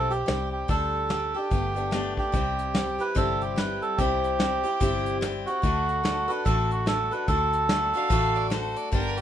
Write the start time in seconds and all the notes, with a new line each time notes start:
Already playing: B1 G3 C4 E4 A4
0.10 C4 E4 G4, closed hi-hat
0.26 C2 G3 C4 E4 G4, snare, closed hi-hat
0.52 G4
0.68 D2 D3 G3 D4 G4 A4, kick, closed hi-hat
1.09 G3 D4 G4 A4, snare, closed hi-hat
1.34 D4 G4 A4
1.51 G1 A3 B3 D4 G4, kick, closed hi-hat
1.75 A3 B3 D4 G4, closed hi-hat
1.91 A3 B3 D4 G4, snare, closed hi-hat
2.17 G4, kick
2.32 C2 C3 G3 C4 E4 G4, kick, closed hi-hat
2.59 closed hi-hat
2.74 G3 C4 E4 G4, snare, closed hi-hat
2.98 C4 E4 G4 B4, closed hi-hat
3.15 G1 C3 G3 C4 E4 G4 A4, kick, closed hi-hat
3.41 G4, closed hi-hat
3.56 G3 C4 E4 G4 B4, snare, closed hi-hat
3.82 A4, closed hi-hat
3.98 C2 C3 G3 C4 E4 G4, kick, closed hi-hat
4.24 closed hi-hat
4.39 G3 C4 E4 G4, snare, closed hi-hat
4.63 C4 E4 G4, closed hi-hat
4.80 G1 C3 G3 C4 E4 G4, kick, closed hi-hat
5.06 closed hi-hat
5.21 G3 C4 E4 G4, snare, closed hi-hat
5.46 C4 E4 F#4 G4, closed hi-hat
5.62 D2 D3 A3 D4 F#4 A4, kick, closed hi-hat
5.89 closed hi-hat
6.04 A3 D4 F#4 A4, snare, closed hi-hat
6.28 D4 F#4 A4 B4, closed hi-hat
6.45 A1 D3 A3 D4 F#4 A4, kick, closed hi-hat
6.71 F#4, closed hi-hat
6.86 A3 D4 F#4 A4, snare, closed hi-hat
7.11 D4 F#4 A4 B4, closed hi-hat
7.28 D2 D3 A3 D4 F#4 A4, kick, closed hi-hat
7.53 closed hi-hat
7.69 A3 D4 F#4 A4, snare, closed hi-hat
7.94 D4 F#4 A4 F5, closed hi-hat
8.10 A1 D3 A3 D4 F#4 A4, kick, closed hi-hat
8.35 D5, closed hi-hat
8.50 A3 D4 F#4 A4 C5, snare, closed hi-hat
8.76 D5, closed hi-hat
8.92 G1 G2 D3 G3 B3 D4 G4 A#4, kick, closed hi-hat
9.17 G4, closed hi-hat